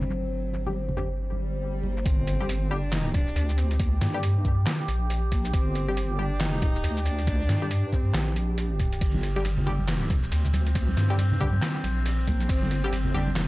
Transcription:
Already playing: G1 D3 G3 C4
0.01 low conga, shaker
0.10 F#3, high conga, shaker
0.53 muted conga, shaker
0.66 D3 G3 G4, muted conga, high conga
0.88 muted conga, low conga
0.97 D3 G3 G4, low conga, shaker
1.19 swell
1.32 high conga
1.83 A#3, high conga
1.97 shaker
2.06 G1 C4 G4, kick, closed hi-hat, impact
2.27 closed hi-hat
2.40 D3 G3 G4
2.49 closed hi-hat
2.71 D3 G3 D4 G4
2.93 D#4, snare, clap, closed hi-hat
3.14 D4, kick, closed hi-hat
3.27 shaker
3.36 D2, closed hi-hat
3.49 shaker
3.58 C4, closed hi-hat, shaker
3.71 closed hi-hat
3.80 A#3, kick, closed hi-hat
4.01 G2, snare, closed hi-hat, shaker
4.14 D3 G3 G4
4.23 closed hi-hat
4.45 kick, shaker
4.67 snare, clap, closed hi-hat
4.88 A#1, closed hi-hat
5.10 closed hi-hat
5.32 A#3, kick, closed hi-hat
5.45 closed hi-hat, shaker
5.54 G1 C4, kick, closed hi-hat
5.75 closed hi-hat
5.88 D3 G3 G4
5.97 closed hi-hat
6.19 D3 G3 D4 G4
6.41 D#4, snare, clap, closed hi-hat
6.62 kick, closed hi-hat
6.75 shaker
6.84 D2, closed hi-hat
6.97 shaker
7.06 D4, closed hi-hat, shaker
7.19 closed hi-hat
7.27 kick, closed hi-hat
7.49 G2, snare, closed hi-hat, shaker
7.62 D3 G3 G4
7.71 closed hi-hat
7.93 C4, kick, shaker
8.14 A#1, snare, clap, closed hi-hat
8.36 closed hi-hat
8.58 closed hi-hat
8.80 kick, closed hi-hat
8.93 closed hi-hat, shaker
9.01 G1 C4, kick, closed hi-hat, ride
9.14 high conga
9.23 closed hi-hat, muted conga
9.36 D3 G3 G4, muted conga
9.45 closed hi-hat, ride, high conga
9.58 muted conga, low conga
9.67 D3 G3 G4, low conga
9.79 high conga
9.88 snare, clap, closed hi-hat, ride
10.10 kick, closed hi-hat, high conga
10.23 shaker
10.32 D2, closed hi-hat, ride
10.45 low conga, shaker
10.54 closed hi-hat, high conga, shaker
10.67 closed hi-hat
10.75 kick, closed hi-hat, ride
10.88 high conga
10.97 G2, snare, closed hi-hat, muted conga, shaker
11.10 D3 G3 G4, muted conga
11.18 closed hi-hat, ride, high conga
11.32 muted conga, low conga
11.41 D3 G3 G4, kick, low conga, shaker
11.53 high conga
11.62 snare, clap, closed hi-hat, ride
11.84 A#1, closed hi-hat, high conga
12.06 closed hi-hat, ride
12.28 A#3, kick, closed hi-hat, high conga
12.41 closed hi-hat, shaker
12.49 G1 C4, kick, closed hi-hat, ride
12.62 high conga
12.71 closed hi-hat, muted conga
12.84 D3 G3 G4, muted conga
12.93 closed hi-hat, ride, high conga
13.05 muted conga, low conga
13.14 D3 G3 D4 G4, low conga
13.27 high conga
13.36 F#3, snare, clap, closed hi-hat, ride

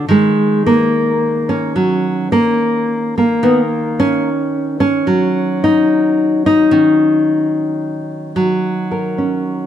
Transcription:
Already playing: G#4
0.09 D#3 G#3
0.66 A#3
1.49 C#4
1.76 F#3
2.32 A#3
3.18 A#3
3.43 D#3 B3
4.00 C#4
4.80 C#4
5.07 F#3
5.64 D#4
6.46 D#4
6.71 D#3 C#4
8.36 F#3
8.91 A#4
9.18 C#4

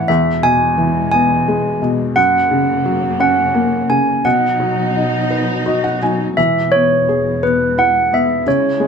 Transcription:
Already playing: E3 C#4 E4 A4 F#5
0.08 E2 B2 G#3 E5
0.43 B2 G#5
0.78 E3
1.12 B3 G#5
1.48 G#3
1.82 B2
2.16 F#2 C#3 A#3 F#5
2.51 C#3
2.86 F#3
3.20 C#4 F#5
3.55 A#3
3.90 C#3 G#5
4.24 B2 F#3 D#4 F#5
4.60 F#3
4.96 D#4
5.31 B4
5.66 F#4 D#5
5.84 F#5
6.02 F#3 G#5
6.36 E2 B2 E3 G#3 E5
6.72 B3 C#5
7.09 G#4
7.43 B3 B4
7.78 E4 F#5
8.13 B3 E5
8.46 C#3 E4 C#5
8.80 G#3

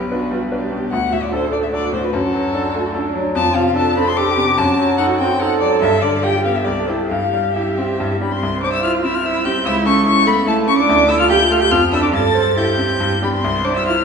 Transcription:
Already playing: B1 B2 G4 B4
0.12 D4 F#4 B4
0.31 G3
0.51 D4 G4 B4
0.72 B2
0.92 D2 F#4 F#5
1.12 A2 E5
1.23 D5
1.32 D4 A4 C5
1.52 A3 D5
1.63 E5
1.73 D4 F#4 A4 D5
1.93 A2 C5
2.04 B4
2.13 F#2 F#4 A4
2.33 F#3
2.54 D4 A4
2.75 A3
2.94 D4 A4
3.15 F#3
3.35 F2 F4 A5
3.54 C3 F5
3.67 F5
3.76 D4 A4 A5
3.97 C4 B5
4.08 C6
4.17 D4 G4 A4 D6
4.37 C3
4.58 F#2 F#4 A5
4.78 F#3
4.98 D#4 A4 F#5
5.18 C4 G5
5.40 D#4 A4 F#5
5.60 F#3 D5
5.81 G2 E5
6.02 D3 D5
6.23 F4 G4 G5
6.44 B3 F5
6.56 E5
6.65 C2 A4 D5
6.87 E4 G4 C5
7.09 G2 G4 F5
7.33 G3
7.54 E4 G4 E5
7.78 C4
8.00 G2
8.20 B3 D4 G4 B5
8.30 C4 C6
8.43 C2
8.62 D4 C5 D6
8.73 E4 E6
8.84 E4 F4 F6
9.04 C4 E4 E6
9.15 F4 F6
9.24 E4 E6
9.45 C4 G4 G6
9.64 C#2 E4 E6
9.85 C#4 A4 C#6
10.05 C#4 E4 C#6
10.26 A3 B3 B5
10.46 A3 E4 A5
10.67 A3 C#4 C#6
10.78 D4 D6
10.89 D2
11.08 E4 A4 E6
11.19 F4 F6
11.29 F4 G4 G6
11.50 A3 F4 F6
11.60 G4 G6
11.70 F2 F4 F6
11.92 D4 E4 A4 E6
12.02 D4 D6
12.13 G2 A4 A6
12.35 C5
12.56 E4 G4 G6
12.78 C4
13.00 G2
13.22 B3 D4 G4 B5
13.33 C4 C6
13.44 C2
13.65 D4 C5 D6
13.75 E4 E6
13.86 E4 F4 F6

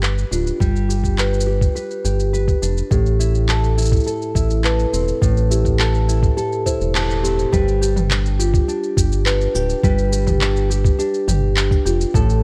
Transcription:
Already playing: G1 G3 G4
0.02 B4, clap, shaker
0.18 shaker
0.31 D1 D4 F4, shaker
0.47 shaker
0.60 G1 G3, kick, shaker
0.76 shaker
0.89 G4, shaker
1.04 kick, shaker
1.18 B4, clap, shaker
1.34 shaker
1.41 shaker
1.46 G4
1.61 kick, shaker
1.75 B4, shaker
1.91 shaker
2.04 G1 G4, shaker
2.20 shaker
2.33 B4, shaker
2.48 kick, shaker
2.62 F1 D4, shaker
2.77 shaker
2.91 A1 A2 G4, kick, shaker
3.06 shaker
3.19 E4, shaker
3.35 shaker
3.49 A4, clap, shaker
3.64 shaker
3.77 E4, shaker
3.82 shaker
3.85 shaker
3.89 kick, shaker
3.93 shaker
3.97 shaker
4.00 shaker
4.04 A4, shaker
4.07 shaker
4.22 shaker
4.35 A1 E4, kick, shaker
4.50 shaker
4.64 A4 B4, clap, shaker
4.79 shaker
4.93 E1 C4, shaker
5.08 shaker
5.22 A1 A2, kick, shaker
5.37 shaker
5.50 E4 G4, shaker
5.65 kick, shaker
5.79 A4, clap, shaker
5.95 shaker
6.08 E4, shaker
6.23 kick, shaker
6.37 G4 A4, shaker
6.53 shaker
6.66 E4 C5, kick, shaker
6.80 E1, shaker
6.95 A4, clap, shaker
7.10 shaker
7.23 C4 G4, shaker
7.39 shaker
7.52 G1 G3 G4 B4, kick, shaker
7.68 shaker
7.81 G4, shaker
7.96 mid tom, shaker
8.10 D4, clap, shaker
8.26 shaker
8.39 F4 G4, shaker
8.54 kick, shaker
8.68 D4, shaker
8.84 shaker
8.97 G1 G4, kick, shaker
9.12 shaker
9.26 D4 B4, clap, shaker
9.41 shaker
9.55 D1 G4, shaker
9.70 shaker
9.83 G1 G3 B4, kick, shaker
9.98 shaker
10.12 G4, shaker
10.27 kick, mid tom, shaker
10.41 D4, clap, shaker
10.56 shaker
10.70 G4, shaker
10.85 kick, shaker
10.99 D4 G4, shaker
11.14 shaker
11.28 G1 G4, mid tom, shaker
11.56 D4, clap, shaker
11.71 kick, shaker
11.85 F1 F4 G4, shaker
12.01 shaker
12.14 A1 A2 A4, kick, shaker
12.30 shaker

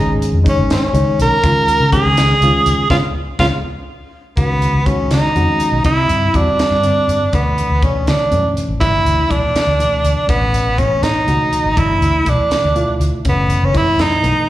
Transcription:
Already playing: G#1 D#3 G#3 C#4 D#4 G#4
0.22 closed hi-hat
0.33 F2
0.44 D#3 G#3 C#4 D#4, kick, closed hi-hat
0.49 C#4
0.57 G#1
0.70 C#4, snare, closed hi-hat
0.82 muted fretless electric bass stroke
0.93 C#2 D#3 G#3 C#4 D#4, closed hi-hat
1.19 B1 A#4, closed hi-hat
1.43 C#2 D#3 G#3 C#4 F4, kick, closed hi-hat
1.68 muted fretless electric bass stroke, closed hi-hat
1.80 C#3
1.92 D#3 G#3 C#4 G#4, kick, closed hi-hat
2.04 C#2
2.17 snare, closed hi-hat
2.41 C#2 D#3 G#3 C#4 F4, closed hi-hat
2.66 C#2, closed hi-hat
2.90 C#2 G#3 B3 C#4 F4, kick, snare
3.39 C#2 G#3 B3 C#4 F4, kick, snare
4.37 C#2 D#3 G#3 B3 C#4 F#4, kick, closed hi-hat
4.62 closed hi-hat
4.73 C#2
4.86 D#3 G#3 C#4 F#4, kick, closed hi-hat
4.99 muted fretless electric bass stroke
5.11 C#3 D#4, snare, closed hi-hat
5.35 F2 D#3 G#3 C#4 F#4, closed hi-hat
5.60 muted fretless electric bass stroke, closed hi-hat
5.72 B1
5.84 C2 D3 G3 C4 E4, kick, closed hi-hat
6.08 G2, closed hi-hat
6.34 E2 D3 G3 C4 D4 F#4, kick, closed hi-hat
6.57 muted fretless electric bass stroke, snare, closed hi-hat
6.71 G2
6.83 D3 G3 C4 D4, closed hi-hat
7.08 G2, closed hi-hat
7.21 muted fretless electric bass stroke
7.33 D2 B2 E3 A3 B3 D4, kick, closed hi-hat
7.58 closed hi-hat
7.70 D2
7.82 B2 E3 A3 C#4 D4, kick, closed hi-hat
7.95 muted fretless electric bass stroke
8.07 D3 D4, snare, closed hi-hat
8.31 F#2 B2 E3 A3 C#4, closed hi-hat
8.57 muted fretless electric bass stroke, closed hi-hat
8.68 G#1
8.80 G1 B2 E3 A3 D4 E4, kick, closed hi-hat
9.05 D2, closed hi-hat
9.29 B1 B2 E3 A3 D4, kick, closed hi-hat
9.55 muted fretless electric bass stroke, snare, closed hi-hat
9.67 D2
9.79 B2 E3 A3 D4, closed hi-hat
10.04 D2, closed hi-hat
10.27 A1 B2 E3 A3 B3 C#4, kick, closed hi-hat
10.54 closed hi-hat
10.67 A1
10.78 B2 E3 A3 B3 C#4, kick, closed hi-hat
10.92 muted fretless electric bass stroke
11.03 A2 D#4, snare, closed hi-hat
11.27 C#2 B2 E3 A3 F#4, closed hi-hat
11.52 muted fretless electric bass stroke, closed hi-hat
11.64 G#1
11.76 G1 B2 E3 A3 D4 E4, kick, closed hi-hat
12.01 D2, closed hi-hat
12.25 B1 B2 E3 A3 D4 E4, kick, closed hi-hat
12.51 muted fretless electric bass stroke, snare, closed hi-hat
12.64 D2
12.76 B2 A3 E4 F4, closed hi-hat
13.00 D2, closed hi-hat
13.25 F#1 B2 E3 A3 C#4, kick, closed hi-hat
13.29 B3
13.50 closed hi-hat
13.61 F#1 C#4
13.74 B2 E3 A3 E4, kick, closed hi-hat
13.87 muted fretless electric bass stroke
13.99 F#2 D#4, snare, closed hi-hat
14.23 B1 B2 E3 A3 B3, closed hi-hat

